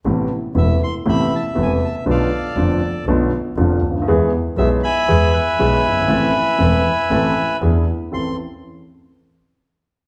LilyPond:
<<
  \new Staff \with { instrumentName = "Bandoneon" } { \time 4/4 \key a \minor \tempo 4 = 119 << { r4 e''8 c'''8 b''8 a''8 gis''8 a''8 | f''4 r2. | r4 e''8 b''4 gis''4.~ | gis''2. r4 |
c'''8 r2. r8 | } \\ { r2 e''2 | <a' d''>2 r2 | r4. <e'' gis''>4 <b' e''>4.~ | <b' e''>2. r4 |
r1 | } >> }
  \new Staff \with { instrumentName = "Grand piano" } { \clef bass \time 4/4 \key a \minor <a,, a, c a b e'>8 r8 <e,, e, c a b e'>8 r8 <a,, a, c a b e'>8 r8 <e,, e, c a b e'>8 r8 | <b,, b, d a b f'>8 r8 <f,, f, d a b f'>8 r8 <b,, b, d a b f'>8 r8 <f,, f, d a b f'>8 r32 cis,32 d,32 dis,32 | <e, e gis b gis'>8 r8 <b,, b, e gis b gis'>8 r8 <e, e gis b gis'>8 r8 <b,, b, e gis b gis'>8 r32 fis,,32 g,,32 gis,,32 | <a,, a, e a c' a'>8 r8 <e,, e, e a c' a'>8 r8 <a,, a, e a c' a'>8 r8 <e, e b d' gis'>8 r8 |
<a,, c' e' a'>8 r2. r8 | }
  \new Staff \with { instrumentName = "Double bass" } { \clef bass \time 4/4 \key a \minor a,,8 r8 e,,8 r8 a,,8 r8 e,,8 r8 | b,,8 r8 f,,8 r8 b,,8 r8 f,,8 d,8 | e,8 r8 b,,8 r8 e,8 r8 b,,8 g,,8 | a,,8 r8 e,,8 r8 a,,8 r8 e,8 r8 |
a,,8 r2. r8 | }
>>